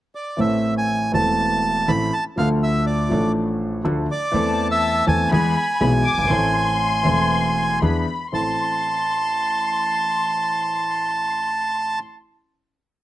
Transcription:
0.15 0.40 D5 medium
0.37 1.10 A1 medium
0.37 1.10 A2 medium
0.37 1.09 E3 medium
0.37 1.09 A3 soft
0.37 1.10 C4 soft
0.37 1.11 A4 medium
0.37 0.74 E5 medium
0.78 1.12 G#5 medium
1.12 1.85 E1 medium
1.12 1.85 E2 medium
1.12 1.84 E3 medium
1.12 1.84 A3 medium
1.12 1.85 C4 soft
1.12 1.86 A4 medium
1.12 1.91 A5 medium
1.88 2.09 A1 medium
1.88 2.09 A2 medium
1.88 2.09 E3 medium
1.88 2.09 A3 medium
1.88 2.09 C4 soft
1.88 2.09 A4 medium
1.88 2.14 B5 medium
2.13 2.24 A5 medium
2.36 3.07 D2 medium
2.36 3.07 D3 medium
2.36 3.06 F3 medium
2.36 3.07 A3 soft
2.36 3.08 D4 soft
2.36 3.08 A4 medium
2.36 2.49 F5 medium
2.63 2.85 E5 medium
2.86 3.32 D5 medium
3.09 3.81 A1 medium
3.09 3.81 A2 medium
3.09 3.80 F3 medium
3.09 3.81 A3 soft
3.09 3.82 D4 medium
3.13 3.82 A4 medium
3.84 4.05 D2 medium
3.84 4.06 D2 medium
3.84 4.05 D3 medium
3.84 4.05 F3 medium
3.84 4.05 A3 medium
3.84 4.05 D4 medium
3.84 4.05 A4 medium
4.11 4.68 D5 medium
4.32 5.04 E2 medium
4.32 5.04 E3 medium
4.32 5.03 A3 medium
4.32 5.04 C4 medium
4.32 5.05 A4 medium
4.32 5.28 A5 medium
4.71 5.05 E5 loud
5.07 5.28 E2 medium
5.07 5.28 E3 medium
5.07 5.28 A3 medium
5.07 5.28 C4 medium
5.07 5.28 A4 medium
5.07 5.31 G#5 medium
5.31 5.53 E2 medium
5.31 5.53 E2 loud
5.31 5.53 E3 medium
5.31 5.53 G#3 medium
5.31 5.53 B3 medium
5.31 5.53 G#4 medium
5.31 7.79 G#5 medium
5.31 5.79 B5 medium
5.80 6.02 B1 medium
5.80 6.02 B2 medium
5.80 6.02 E3 medium
5.80 6.02 G#3 medium
5.80 6.02 B3 medium
5.80 6.02 G#4 medium
5.80 5.92 B5 medium
6.05 6.29 D6 medium
6.12 6.17 F#1 soft
6.12 6.18 F#1 soft
6.18 6.23 G1 soft
6.18 6.25 G1 medium
6.24 6.30 G#1 medium
6.24 6.31 G#1 medium
6.28 7.02 A1 medium
6.28 7.02 A2 medium
6.28 7.01 E3 medium
6.28 7.01 A3 soft
6.28 7.02 C4 soft
6.28 7.03 A4 medium
6.28 7.82 C6 medium
7.03 7.78 E1 medium
7.03 7.78 E2 medium
7.03 7.77 E3 medium
7.03 7.78 A3 medium
7.03 7.78 C4 medium
7.07 7.79 A4 medium
7.82 8.04 E2 medium
7.82 8.04 E3 medium
7.82 8.04 B3 soft
7.82 8.04 D4 medium
7.82 8.04 G#4 medium
7.82 8.33 B5 medium
8.32 11.97 A1 soft
8.32 8.54 A1 soft
8.32 11.97 C4 soft
8.32 11.97 E4 soft
8.32 11.97 A4 soft
8.32 11.99 A5 medium
8.32 11.98 C6 medium

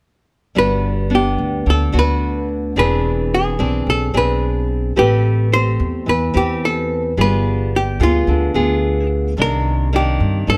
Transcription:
0.55 1.35 G1 medium
0.55 1.63 G3 soft
0.55 1.06 B3 soft
0.55 1.07 D4 soft
0.55 1.07 F#4 medium
0.55 1.14 B4 loud
1.10 1.65 B3 medium
1.10 1.66 D4 medium
1.15 1.70 G4 medium
1.38 1.64 D2 medium
1.66 1.92 D2 medium
1.66 2.74 D3 soft
1.66 1.97 A4 medium
1.92 2.72 D2 medium
1.92 2.71 B3 medium
1.92 2.72 D4 medium
1.92 2.72 F#4 medium
1.99 2.48 B4 medium
2.76 3.55 E1 medium
2.76 3.84 E3 soft
2.76 3.55 C4 soft
2.76 3.55 D4 medium
2.76 3.55 G#4 medium
2.76 3.34 B4 medium
3.34 3.89 G#4 medium
3.59 3.85 B1 medium
3.59 4.10 C4 medium
3.59 4.10 D4 medium
3.59 4.10 G#4 medium
3.87 4.12 B1 medium
3.87 4.16 A4 medium
4.14 4.93 B1 medium
4.14 4.92 C4 medium
4.14 4.92 D4 medium
4.14 4.92 G#4 medium
4.14 4.67 B4 medium
4.96 5.76 A1 medium
4.96 6.04 A3 soft
4.96 5.47 C4 soft
4.96 5.47 G4 soft
4.96 5.49 G4 medium
4.96 5.48 B4 medium
5.53 6.07 C4 soft
5.53 6.07 G4 medium
5.53 6.09 C5 medium
5.80 6.05 E2 medium
6.06 6.33 E2 medium
6.06 7.14 E3 soft
6.06 6.36 B4 medium
6.34 7.13 E2 medium
6.34 7.12 C4 medium
6.34 7.12 G4 medium
6.34 6.64 G4 medium
6.34 7.12 B4 medium
6.65 7.02 A4 medium
7.17 7.96 G1 medium
7.17 8.24 G3 soft
7.17 7.72 B3 soft
7.17 7.72 F4 soft
7.17 7.72 G#4 soft
7.17 7.76 B4 medium
7.76 8.02 G4 medium
7.99 8.25 D2 medium
7.99 8.50 B3 medium
7.99 8.50 F4 medium
7.99 9.07 F4 medium
7.99 8.51 G#4 medium
8.27 8.53 D2 medium
8.27 9.35 D3 medium
8.54 9.33 D2 medium
8.54 9.33 B3 medium
8.54 9.33 F4 medium
8.54 9.33 G#4 medium
9.37 10.15 C2 medium
9.37 10.45 C3 soft
9.37 9.88 D#3 soft
9.37 9.88 A#3 soft
9.37 9.89 D4 soft
9.42 9.96 A#4 loud
9.93 10.57 D#3 medium
9.93 10.57 A#3 medium
9.93 10.57 D4 soft
9.93 10.51 G4 medium
10.20 10.45 G2 medium
10.47 10.57 G2 medium
10.47 10.57 A4 medium

